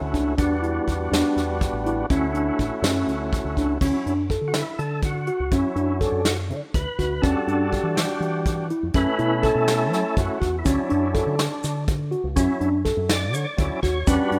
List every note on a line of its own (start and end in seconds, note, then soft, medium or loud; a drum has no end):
0.00 0.11 D2 medium
0.00 0.35 A3 medium
0.00 0.35 C#4 medium
0.00 0.35 E4 medium
0.00 0.35 F#4 medium
0.14 0.34 C#2 medium
0.14 0.29 D4 medium
0.14 kick medium
0.14 closed hi-hat medium
0.37 0.78 E2 medium
0.37 2.06 G3 medium
0.37 2.06 B3 medium
0.37 0.53 D4 medium
0.37 2.06 D4 medium
0.37 2.06 F#4 medium
0.37 kick loud
0.37 closed hi-hat medium
0.62 0.92 E4 medium
0.62 closed hi-hat medium
0.88 1.08 E2 medium
0.88 kick medium
0.88 closed hi-hat medium
1.12 1.22 E2 medium
1.12 1.41 D4 medium
1.12 snare loud
1.12 closed hi-hat medium
1.36 1.66 E2 medium
1.36 snare soft
1.36 closed hi-hat medium
1.61 kick loud
1.61 closed hi-hat medium
1.73 2.03 A1 medium
1.86 2.01 E4 medium
1.86 closed hi-hat medium
2.10 2.50 D2 medium
2.10 3.78 A3 medium
2.10 3.78 C#4 medium
2.10 2.25 C#4 medium
2.10 3.78 E4 medium
2.10 3.78 F#4 medium
2.10 kick loud
2.10 closed hi-hat medium
2.34 2.64 D4 medium
2.34 closed hi-hat medium
2.59 2.69 A1 medium
2.59 kick medium
2.59 closed hi-hat medium
2.82 3.02 F#2 medium
2.82 3.13 C#4 medium
2.82 snare loud
2.82 closed hi-hat medium
3.07 3.37 D2 medium
3.07 closed hi-hat medium
3.33 kick loud
3.33 closed hi-hat medium
3.45 3.54 D2 medium
3.57 3.77 C#2 medium
3.57 3.72 D4 medium
3.57 kick medium
3.57 closed hi-hat medium
3.81 3.91 D2 medium
3.81 4.14 F#3 soft
3.81 3.96 C#4 medium
3.81 4.14 C#4 soft
3.81 4.14 E4 medium
3.81 kick loud
3.81 crash medium
4.06 4.36 F#2 medium
4.06 4.21 D4 medium
4.06 closed hi-hat medium
4.30 4.60 A4 medium
4.30 kick medium
4.30 closed hi-hat medium
4.41 4.62 D3 medium
4.48 4.54 F#4 medium
4.54 4.79 E4 medium
4.54 snare loud
4.54 closed hi-hat medium
4.79 5.29 D3 medium
4.79 5.02 A4 medium
4.79 closed hi-hat medium
5.02 5.54 F#4 medium
5.02 kick loud
5.02 closed hi-hat medium
5.27 5.42 F#4 medium
5.27 closed hi-hat medium
5.40 5.50 C#2 medium
5.51 5.62 F#2 medium
5.51 6.22 F#3 soft
5.51 6.22 C#4 soft
5.51 5.67 C#4 medium
5.51 5.99 E4 medium
5.51 kick loud
5.51 closed hi-hat medium
5.75 6.06 F#2 medium
5.75 5.91 D4 medium
5.75 closed hi-hat medium
6.01 6.25 D4 medium
6.01 6.30 A4 medium
6.01 kick medium
6.01 closed hi-hat medium
6.12 6.51 F#2 medium
6.25 6.37 F#4 medium
6.25 snare loud
6.25 closed hi-hat medium
6.50 6.60 D3 medium
6.50 closed hi-hat medium
6.74 6.84 D2 medium
6.74 7.25 B4 medium
6.74 kick loud
6.74 closed hi-hat medium
6.99 7.19 D2 medium
6.99 7.14 F#4 medium
6.99 kick medium
6.99 closed hi-hat medium
7.22 7.33 E2 medium
7.22 8.45 G3 soft
7.22 7.37 C#4 medium
7.22 8.45 D4 soft
7.22 8.46 F#4 medium
7.22 7.98 A4 medium
7.22 kick loud
7.22 closed hi-hat medium
7.47 7.77 G2 medium
7.47 7.63 D4 medium
7.47 closed hi-hat medium
7.73 8.02 G4 medium
7.73 kick medium
7.73 closed hi-hat medium
7.83 8.04 E3 medium
7.95 8.66 G4 medium
7.95 snare loud
7.95 closed hi-hat medium
8.20 8.70 E3 medium
8.20 closed hi-hat medium
8.46 8.68 G3 soft
8.46 8.68 D4 soft
8.46 8.68 F#4 soft
8.46 kick loud
8.46 closed hi-hat medium
8.70 8.85 E4 medium
8.70 closed hi-hat medium
8.83 8.93 F2 medium
8.93 9.04 F#2 medium
8.93 10.15 A3 soft
8.93 9.09 C#4 medium
8.93 10.16 C#4 soft
8.93 10.17 E4 soft
8.93 9.45 B4 medium
8.93 kick loud
8.93 closed hi-hat medium
9.19 9.49 B2 medium
9.19 9.34 E4 medium
9.19 closed hi-hat medium
9.43 10.19 A4 loud
9.43 9.73 A4 medium
9.43 kick medium
9.43 closed hi-hat medium
9.55 9.92 B2 medium
9.68 snare loud
9.68 closed hi-hat medium
9.92 10.02 F#3 medium
9.92 snare soft
9.92 closed hi-hat medium
10.16 10.27 F#2 medium
10.16 10.39 A3 soft
10.16 10.39 C#4 soft
10.16 10.39 E4 soft
10.16 10.56 F#4 medium
10.16 kick loud
10.16 closed hi-hat medium
10.40 10.61 E2 medium
10.40 10.55 F#4 medium
10.40 kick medium
10.40 closed hi-hat medium
10.59 10.65 E4 medium
10.65 10.76 D2 medium
10.65 11.35 F#3 soft
10.65 10.80 C#4 medium
10.65 11.35 C#4 soft
10.65 11.84 D4 medium
10.65 11.36 E4 medium
10.65 kick loud
10.65 closed hi-hat medium
10.65 shaker soft
10.89 11.21 F#2 medium
10.89 11.04 D4 medium
10.89 closed hi-hat medium
11.14 11.44 A4 medium
11.14 kick medium
11.14 closed hi-hat medium
11.27 11.47 D3 medium
11.39 snare loud
11.39 closed hi-hat medium
11.39 shaker soft
11.64 12.14 D3 medium
11.64 snare soft
11.64 closed hi-hat medium
11.64 shaker medium
11.88 kick loud
11.88 closed hi-hat medium
12.11 12.26 F#4 medium
12.11 closed hi-hat medium
12.24 12.34 C#2 medium
12.36 12.47 F#2 medium
12.36 12.69 F#3 soft
12.36 12.51 C#4 medium
12.36 12.69 C#4 soft
12.36 12.70 E4 medium
12.36 kick loud
12.36 closed hi-hat medium
12.36 shaker medium
12.61 12.91 F#2 medium
12.61 12.76 D4 medium
12.61 closed hi-hat medium
12.85 13.14 A4 medium
12.85 kick medium
12.85 snare soft
12.85 closed hi-hat medium
12.97 13.34 F#2 medium
13.09 13.35 D5 loud
13.09 snare loud
13.09 closed hi-hat medium
13.09 shaker soft
13.34 13.44 D3 medium
13.34 13.47 C#5 medium
13.34 closed hi-hat medium
13.34 shaker medium
13.45 13.80 D5 loud
13.57 13.69 D2 medium
13.57 13.80 F#3 soft
13.57 13.80 C#4 soft
13.57 13.81 E4 medium
13.57 kick loud
13.57 closed hi-hat medium
13.83 14.03 D#2 medium
13.83 13.98 F#4 medium
13.83 14.08 C#5 medium
13.83 kick medium
13.83 snare soft
13.83 closed hi-hat medium
14.07 14.17 E2 loud
14.07 14.39 G3 soft
14.07 14.22 C#4 medium
14.07 14.39 D4 soft
14.07 14.39 F#4 medium
14.07 14.39 B4 medium
14.07 kick loud
14.07 closed hi-hat medium
14.07 shaker soft
14.31 14.39 G2 medium
14.31 14.39 D4 medium
14.31 closed hi-hat medium